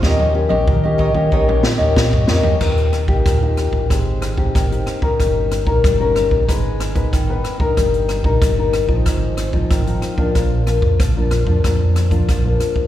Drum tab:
CC |----------------|x---------------|----------------|----------------|
HH |----------------|-xx-x-x-x-x-xxx-|x-x-x-x-x-xxx-x-|xxx-x-x-x-x-xxx-|
SD |o---------o-o-o-|r-r-r-r-r-r-r-r-|r-r-r-r-r-r-r-r-|r-r-r-r-r-r-r-r-|
T1 |-o-o------------|----------------|----------------|----------------|
T2 |---------o------|----------------|----------------|----------------|
FT |---------------o|----------------|----------------|----------------|
BD |o---o-ooo---oo--|o--oo--oo--oo--o|o--oo--oo--oo--o|o--oo--oo--oo--o|

CC |----------------|
HH |x-x-x-x-x-xxx-x-|
SD |r-r-r-r-r-r-r-r-|
T1 |----------------|
T2 |----------------|
FT |----------------|
BD |o--oo--oo--oo--o|